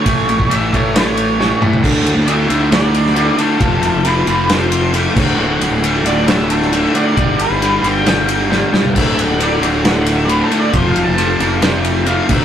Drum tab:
CC |----------------|x---------------|--------------x-|----------------|
RD |x-x-x-x-x-x-----|--x-x-x-x-x-x-x-|x-x-x-x-x-x-x---|--x-x-x-x-x-x-x-|
SD |--------o---o---|--------o--o----|--------o-------|--------o--o----|
T2 |--------------o-|----------------|----------------|----------------|
FT |---------------o|----------------|----------------|----------------|
BD |o--o--o---------|o---------------|o-------------o-|----------------|

CC |----------------|x---------------|--------------x-|
RD |x-x-x-x-x-x-----|--x-x-x-x-x-x-x-|x-x-x-x-x-x-x---|
SD |--------o---o-o-|--------o-------|--------o-------|
T2 |----------------|----------------|----------------|
FT |---------------o|----------------|----------------|
BD |o---------------|o---------------|o-------------o-|